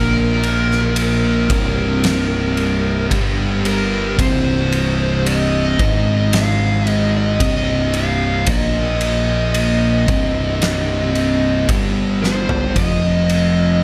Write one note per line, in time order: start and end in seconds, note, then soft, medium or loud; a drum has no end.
0.00 1.46 A#1 loud
0.00 1.48 A#2 medium
0.00 1.48 A#3 loud
0.00 3.06 A#4 medium
0.43 ride medium
0.71 snare soft
0.96 ride medium
1.50 3.07 C1 medium
1.50 3.09 C2 medium
1.50 3.09 C3 medium
1.50 kick loud
1.50 ride medium
2.04 snare loud
2.04 ride loud
2.57 ride medium
3.09 4.14 G1 medium
3.09 4.16 G2 medium
3.09 4.17 G3 medium
3.09 kick medium
3.09 ride medium
3.65 4.16 A#4 medium
3.65 ride medium
4.17 5.76 C1 loud
4.17 5.77 C2 loud
4.17 5.78 C3 loud
4.17 5.23 C5 loud
4.17 kick loud
4.17 ride medium
4.72 ride medium
5.26 6.35 D#5 medium
5.26 ride medium
5.79 7.37 G#1 medium
5.79 7.39 G#2 medium
5.79 7.39 G#3 medium
5.79 kick loud
5.79 ride medium
6.33 6.90 F5 loud
6.33 snare loud
6.33 ride loud
6.87 7.11 D#5 loud
6.87 ride medium
7.17 7.92 D#5 medium
7.40 8.44 C1 medium
7.40 8.46 C2 loud
7.40 8.46 C3 loud
7.40 kick loud
7.40 ride loud
7.94 8.50 F5 medium
7.94 ride medium
8.46 10.04 A#1 medium
8.46 10.07 A#2 loud
8.46 10.07 A#3 loud
8.46 kick loud
8.46 ride loud
8.51 11.67 D#5 medium
9.01 ride medium
9.54 ride medium
10.07 11.65 C1 medium
10.07 11.67 C2 medium
10.07 11.68 C3 medium
10.07 kick loud
10.07 ride medium
10.62 snare loud
10.62 ride medium
11.15 ride medium
11.69 12.72 G1 medium
11.69 12.74 G2 medium
11.69 12.75 G3 loud
11.69 kick loud
11.69 ride medium
12.22 12.78 C5 medium
12.22 snare medium
12.49 floor tom medium
12.75 13.84 F1 loud
12.75 13.84 F2 medium
12.75 13.84 F3 loud
12.75 13.83 D#5 loud
12.75 kick loud
12.75 ride medium
13.29 ride medium